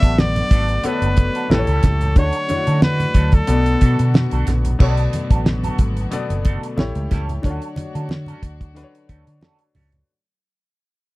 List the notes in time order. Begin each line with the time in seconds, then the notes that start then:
Already playing: D3 F#3 A3 B3 F#4 A4 D5 E5
0.03 A1 A3 D4 F#4 A4, kick, closed hi-hat
0.18 D5, snare, high conga
0.36 closed hi-hat, low conga
0.51 G#1 A3 D4 F#4 A4, kick, closed hi-hat
0.68 muted clean electric guitar stroke, closed hi-hat
0.83 A3 B3 D4 F#4 A4 B4 C#5, muted fingered electric bass stroke, closed hi-hat, muted conga
0.93 D5
1.02 F#1, closed hi-hat
1.17 muted clean electric guitar stroke, kick, closed hi-hat, muted conga
1.35 A3 D4 F#4 A4, closed hi-hat
1.49 A1 E3 G3 A3 E4 G4 A4 B4 C#5, snare, high conga
1.58 C#5
1.67 C#2 G3 C#4 E4 A4, closed hi-hat
1.83 C#2, kick, snare, closed hi-hat, muted conga, low conga
2.01 muted clean electric guitar stroke, closed hi-hat, low conga
2.15 D2 D3 F#3 A3 C#4 D4 F#4 A4 C#5, kick, closed hi-hat, muted conga
2.33 muted clean electric guitar stroke, closed hi-hat
2.48 D3 D4 E4 C#5, muted clean electric guitar stroke, muted fingered electric bass stroke, closed hi-hat, muted conga, high conga
2.56 F#4
2.67 D3 A3 C#4 F#4 A4, closed hi-hat
2.82 B4, snare, muted conga, high conga
3.00 closed hi-hat, low conga
3.14 D2 A3 C#4 F#4 A4, kick, closed hi-hat
3.32 A4, muted clean electric guitar stroke, kick, closed hi-hat
3.47 B1 B2 D3 B3 F#4 A4 D5, muted clean electric guitar stroke, closed hi-hat, muted conga
3.66 closed hi-hat
3.81 B2 A3 D4 F#4 A4, kick, closed hi-hat
3.99 B2, muted clean electric guitar stroke, closed hi-hat
4.14 muted clean electric guitar stroke, snare, high conga
4.31 B1 A3 D4 F#4 A4, closed hi-hat
4.47 A#1, muted clean electric guitar stroke, snare, closed hi-hat, muted conga, low conga
4.65 muted clean electric guitar stroke, closed hi-hat, low conga
4.79 B1 B2 D3 F#3 A3 B3 D4 F#4 A4 C#5, kick, crash, muted conga
4.89 D5
4.97 closed hi-hat
5.13 muted clean electric guitar stroke, closed hi-hat, muted conga, high conga
5.31 A1 A3 D4 F#4 A4, kick, closed hi-hat
5.46 muted clean electric guitar stroke, snare, high conga
5.64 A3 D4 F#4 A4, closed hi-hat, low conga
5.78 G#1, kick, closed hi-hat, muted conga
5.97 muted clean electric guitar stroke, closed hi-hat
6.11 B2 B3 A4 D5, muted clean electric guitar stroke, muted fingered electric bass stroke, closed hi-hat, muted conga
6.30 F#1, muted clean electric guitar stroke, closed hi-hat
6.45 A3 D4 F#4 A4, kick, closed hi-hat, muted conga
6.63 muted clean electric guitar stroke, closed hi-hat
6.76 A1 E3 G3 A3 E4 G4 C#5, muted clean electric guitar stroke, snare, muted conga, high conga
6.95 C#2, muted clean electric guitar stroke, closed hi-hat
7.11 C#2 G3 C#4 E4 A4, kick, snare, closed hi-hat, low conga
7.29 muted clean electric guitar stroke, closed hi-hat, low conga
7.42 D2 D3 F#3 A3 C#4 D4 F4 F#4 A4 C#5, kick, closed hi-hat, muted conga
7.51 F#4
7.62 closed hi-hat
7.76 muted clean electric guitar stroke, muted fingered electric bass stroke, closed hi-hat, muted conga, high conga
7.95 D3 A3 C#4 F#4 A4, closed hi-hat
8.09 muted clean electric guitar stroke, snare, muted conga, high conga
8.26 A3 C#4 F#4 A4, closed hi-hat, low conga
8.43 D2, kick, closed hi-hat
8.60 muted clean electric guitar stroke, kick, closed hi-hat
8.74 D3 D4 F#4 B4, muted clean electric guitar stroke, snare, closed hi-hat
8.83 C#5
8.94 muted clean electric guitar stroke, closed hi-hat
9.09 D2 A3 C#4 F#4 A4, kick, closed hi-hat
9.27 D3, muted clean electric guitar stroke, closed hi-hat
9.41 A3 C#4 F#4 A4, snare, high conga
9.59 muted clean electric guitar stroke, closed hi-hat
9.75 C#2 A3 C#4 F#4 A4, open hi-hat, low conga
9.92 closed hi-hat, low conga